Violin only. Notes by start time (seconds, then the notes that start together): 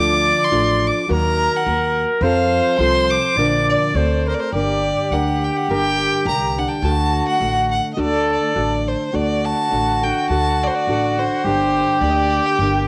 0.00 D6
0.44 C6
0.87 D6
1.13 A#5
1.57 F#5
2.23 F5
2.79 C6
3.10 D6
3.69 D5
4.29 C5
4.34 D5
4.40 C5
4.55 D5
5.12 F#5
5.44 G5
5.57 F#5
5.72 G5
6.28 A#5
6.58 F#5
6.67 G5 A5
6.82 A5
7.28 F#5
7.71 F#5
7.94 D#5
8.00 D5
8.32 D5
8.87 C5
9.15 D5
9.45 A5
10.03 G5
10.30 A5
10.63 C5 D5
10.75 D5
11.19 C5
12.02 D5
12.10 D#5
12.16 D5
12.46 G5